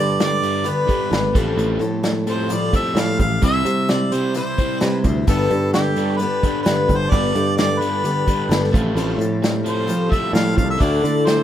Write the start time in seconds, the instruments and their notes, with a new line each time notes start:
Already playing: overdriven electric guitar G2 D3, picked electric bass G2, twelve-string acoustic guitar G4 A4
0.00 twelve-string acoustic guitar D4, harmonica D5
0.20 overdriven electric guitar G2 D3, snare, closed hi-hat
0.24 harmonica D5
0.42 overdriven electric guitar G2 D3 G3, closed hi-hat
0.64 overdriven electric guitar G2 D3, twelve-string acoustic guitar G3 B3 D4 G4 A4, harmonica B4, closed hi-hat
0.87 overdriven electric guitar G2 D3 G3, twelve-string acoustic guitar G4 A4, kick, closed hi-hat
0.91 twelve-string acoustic guitar D4
1.11 picked electric bass G#1, overdriven electric guitar G2 D3, twelve-string acoustic guitar B3 D4 G4 A4, snare, closed hi-hat
1.34 picked electric bass A1, overdriven electric guitar A2 F3 C4, twelve-string acoustic guitar F3 G3 C4 G4 A4, kick, closed hi-hat
1.38 twelve-string acoustic guitar A2
1.57 picked electric bass A1, overdriven electric guitar A2 F3 C4, closed hi-hat
1.79 picked electric bass A2, overdriven electric guitar A2 F3, twelve-string acoustic guitar G3 C4 G4 A4, closed hi-hat
2.03 overdriven electric guitar A2 F3, snare, closed hi-hat
2.27 overdriven electric guitar A2 F3 C4, twelve-string acoustic guitar G3 C4 G4 A4, harmonica C5, closed hi-hat
2.49 twelve-string acoustic guitar A2 F3 G3 C4 G4 A4, overdriven electric guitar A2 F3, closed hi-hat
2.54 harmonica D5
2.72 overdriven electric guitar A2 F3 C4, twelve-string acoustic guitar G3 C4 G4 A4, kick, closed hi-hat
2.76 harmonica E5
2.95 picked electric bass A2, overdriven electric guitar A2 F3, twelve-string acoustic guitar G3 C4 G4 A4, snare, closed hi-hat
2.99 harmonica F5
3.19 picked electric bass A1, overdriven electric guitar A2 F3, harmonica F5, kick, closed hi-hat
3.42 picked electric bass C2, twelve-string acoustic guitar C3 E3 G3 C4 E4 C5, overdriven electric guitar C3 G3 C4, harmonica E5, kick, closed hi-hat
3.65 picked electric bass C3, overdriven electric guitar C3 G3, twelve-string acoustic guitar G3 C4 E4 C5, closed hi-hat
3.89 overdriven electric guitar C3 G3, harmonica D5, snare, closed hi-hat
4.12 overdriven electric guitar C3 G3 C4, harmonica C5, closed hi-hat
4.34 twelve-string acoustic guitar C3 E3 G3 C4 E4 C5, overdriven electric guitar C3 G3, harmonica C5, closed hi-hat
4.58 overdriven electric guitar C3 G3 C4, twelve-string acoustic guitar C4 E4 C5, kick, closed hi-hat
4.62 twelve-string acoustic guitar G3
4.81 overdriven electric guitar C3 G3, picked electric bass C3, twelve-string acoustic guitar G3 C4 E4, harmonica B4, snare, closed hi-hat
4.85 twelve-string acoustic guitar C5
5.04 picked electric bass D2, overdriven electric guitar C3 G3, twelve-string acoustic guitar C4 E4 C5, kick, closed hi-hat
5.08 twelve-string acoustic guitar G3
5.27 picked electric bass G1, overdriven electric guitar G2 D3 G3, twelve-string acoustic guitar G3 B3 D4 G4 A4, tonewheel organ B3 D4 G4 A4, harmonica A4, kick, closed hi-hat
5.51 picked electric bass G2, overdriven electric guitar G2 D3, twelve-string acoustic guitar D4 G4 A4, closed hi-hat
5.73 overdriven electric guitar G2 D3, harmonica G4, snare, closed hi-hat
5.96 overdriven electric guitar G2 D3 G3, twelve-string acoustic guitar G4 A4, closed hi-hat
6.01 twelve-string acoustic guitar D4
6.17 overdriven electric guitar G2 D3, twelve-string acoustic guitar G3 B3, harmonica B4, closed hi-hat
6.21 twelve-string acoustic guitar D4 G4 A4
6.42 overdriven electric guitar G2 D3 G3, twelve-string acoustic guitar G4 A4, kick, closed hi-hat
6.46 twelve-string acoustic guitar D4
6.62 harmonica B4, closed hi-hat
6.66 overdriven electric guitar G2 D3, picked electric bass G2, twelve-string acoustic guitar B3 D4 G4 A4, snare
6.88 picked electric bass G1, overdriven electric guitar G2 D3, kick, closed hi-hat
6.97 harmonica C5
7.10 picked electric bass G1, overdriven electric guitar G2 D3 G3, twelve-string acoustic guitar G3 B3 D4, harmonica D5, kick, closed hi-hat
7.14 twelve-string acoustic guitar G4 A4
7.35 overdriven electric guitar G2 D3, picked electric bass G2, twelve-string acoustic guitar D4 G4 A4, closed hi-hat
7.57 overdriven electric guitar G2 D3, harmonica D5, snare, closed hi-hat
7.79 overdriven electric guitar G2 D3 G3, twelve-string acoustic guitar G4 A4, harmonica B4, closed hi-hat
7.83 twelve-string acoustic guitar D4
8.04 overdriven electric guitar G2 D3, twelve-string acoustic guitar G3 B3 D4 G4 A4, closed hi-hat
8.26 overdriven electric guitar G2 D3 G3, twelve-string acoustic guitar D4 G4 A4, kick, closed hi-hat
8.49 picked electric bass G1, overdriven electric guitar G2 D3, twelve-string acoustic guitar B3 D4 G4 A4, snare, closed hi-hat
8.64 snare
8.71 picked electric bass A1, overdriven electric guitar A2 F3 A3, twelve-string acoustic guitar G3 C4 G4 A4, tonewheel organ C4 F4 G4 A4, kick, closed hi-hat
8.95 picked electric bass A1, overdriven electric guitar A2 F3 A3, twelve-string acoustic guitar A2 F3 G3 C4 G4 A4, closed hi-hat
9.18 picked electric bass A2, overdriven electric guitar A2 F3, twelve-string acoustic guitar G3 C4 G4 A4, closed hi-hat
9.42 overdriven electric guitar A2 F3, snare, closed hi-hat
9.65 overdriven electric guitar A2 F3 A3, closed hi-hat
9.69 harmonica C5
9.87 twelve-string acoustic guitar A2 F3 G3 C4 G4 A4, overdriven electric guitar A2 F3, closed hi-hat
10.10 overdriven electric guitar A2 F3 A3, twelve-string acoustic guitar G4 A4, harmonica E5, kick, closed hi-hat
10.14 twelve-string acoustic guitar C4
10.33 overdriven electric guitar A2 F3, picked electric bass A2, twelve-string acoustic guitar G3 C4 G4 A4, harmonica F5, snare, closed hi-hat
10.47 snare
10.56 picked electric bass C2, overdriven electric guitar A2 F3, twelve-string acoustic guitar G3 C4 G4 A4, harmonica F5, kick, closed hi-hat
10.70 harmonica E5
10.79 picked electric bass D2, overdriven electric guitar D3 A3 D4, twelve-string acoustic guitar D3 F#3 A3 D4 E4, tonewheel organ D4 E4 F#4 A4, harmonica D5, kick, closed hi-hat
10.83 twelve-string acoustic guitar A4
11.03 overdriven electric guitar D3 A3, picked electric bass D3, twelve-string acoustic guitar A3 D4 E4 A4, closed hi-hat
11.26 overdriven electric guitar D3 A3, harmonica C5, snare, closed hi-hat